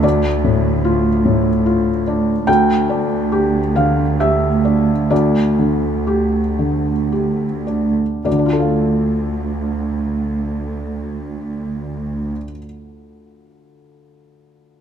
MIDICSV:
0, 0, Header, 1, 3, 480
1, 0, Start_track
1, 0, Key_signature, -1, "minor"
1, 0, Tempo, 821918
1, 18, Time_signature, 3, 2, 24, 8
1, 1937, Tempo, 892857
1, 2897, Tempo, 969305
1, 3377, Tempo, 1047120
1, 3857, Tempo, 1138520
1, 7099, End_track
2, 0, Start_track
2, 0, Title_t, "Felt piano"
2, 0, Program_c, 0, 0
2, 0, Control_c, 0, 64, 127
2, 0, Note_on_c, 0, 62, 31
2, 16, Note_on_c, 0, 38, 38
2, 20, Note_on_c, 0, 74, 50
2, 29, Control_c, 0, 64, 0
2, 119, Control_c, 0, 64, 127
2, 161, Note_off_c, 0, 62, 0
2, 258, Note_on_c, 0, 45, 30
2, 494, Note_on_c, 0, 65, 36
2, 637, Note_off_c, 0, 45, 0
2, 731, Note_on_c, 0, 45, 36
2, 873, Note_off_c, 0, 65, 0
2, 969, Note_on_c, 0, 65, 36
2, 1110, Note_off_c, 0, 45, 0
2, 1183, Note_off_c, 0, 74, 0
2, 1210, Note_on_c, 0, 62, 33
2, 1349, Note_off_c, 0, 65, 0
2, 1421, Note_off_c, 0, 38, 0
2, 1443, Note_on_c, 0, 79, 65
2, 1445, Note_on_c, 0, 38, 46
2, 1447, Note_off_c, 0, 62, 0
2, 1456, Control_c, 0, 64, 0
2, 1565, Control_c, 0, 64, 127
2, 1690, Note_on_c, 0, 62, 33
2, 1939, Note_on_c, 0, 67, 38
2, 2081, Note_off_c, 0, 62, 0
2, 2152, Note_off_c, 0, 79, 0
2, 2174, Note_on_c, 0, 77, 55
2, 2176, Note_on_c, 0, 50, 34
2, 2317, Note_off_c, 0, 67, 0
2, 2395, Note_off_c, 0, 77, 0
2, 2410, Note_on_c, 0, 67, 31
2, 2413, Note_on_c, 0, 76, 57
2, 2556, Note_off_c, 0, 50, 0
2, 2652, Note_on_c, 0, 62, 32
2, 2797, Note_off_c, 0, 67, 0
2, 2876, Note_off_c, 0, 38, 0
2, 2877, Note_off_c, 0, 76, 0
2, 2898, Note_on_c, 0, 38, 38
2, 2898, Note_on_c, 0, 74, 47
2, 2909, Control_c, 0, 64, 0
2, 3011, Control_c, 0, 64, 127
2, 3038, Note_off_c, 0, 62, 0
2, 3137, Note_on_c, 0, 50, 27
2, 3376, Note_on_c, 0, 67, 32
2, 3520, Note_off_c, 0, 50, 0
2, 3614, Note_on_c, 0, 50, 26
2, 3758, Note_off_c, 0, 67, 0
2, 3859, Note_on_c, 0, 67, 23
2, 3997, Note_off_c, 0, 50, 0
2, 4077, Note_off_c, 0, 74, 0
2, 4088, Note_on_c, 0, 62, 23
2, 4239, Note_off_c, 0, 67, 0
2, 4319, Note_off_c, 0, 38, 0
2, 4332, Note_on_c, 0, 38, 28
2, 4333, Note_off_c, 0, 62, 0
2, 4336, Note_on_c, 0, 74, 36
2, 4347, Control_c, 0, 64, 0
2, 4362, Note_on_c, 0, 50, 26
2, 4392, Note_on_c, 0, 62, 26
2, 4422, Note_on_c, 0, 65, 31
2, 4426, Control_c, 0, 64, 127
2, 4450, Note_on_c, 0, 69, 28
2, 4480, Note_on_c, 0, 77, 28
2, 6044, Note_off_c, 0, 38, 0
2, 6047, Note_off_c, 0, 74, 0
2, 6074, Note_off_c, 0, 50, 0
2, 6103, Note_off_c, 0, 62, 0
2, 6133, Note_off_c, 0, 65, 0
2, 6162, Note_off_c, 0, 69, 0
2, 6191, Note_off_c, 0, 77, 0
2, 7099, End_track
3, 0, Start_track
3, 0, Title_t, "Cello section"
3, 0, Program_c, 1, 48
3, 0, Note_on_c, 1, 38, 46
3, 1423, Note_off_c, 1, 38, 0
3, 1444, Note_on_c, 1, 38, 48
3, 4202, Note_off_c, 1, 38, 0
3, 4337, Note_on_c, 1, 38, 37
3, 6048, Note_off_c, 1, 38, 0
3, 7099, End_track
0, 0, End_of_file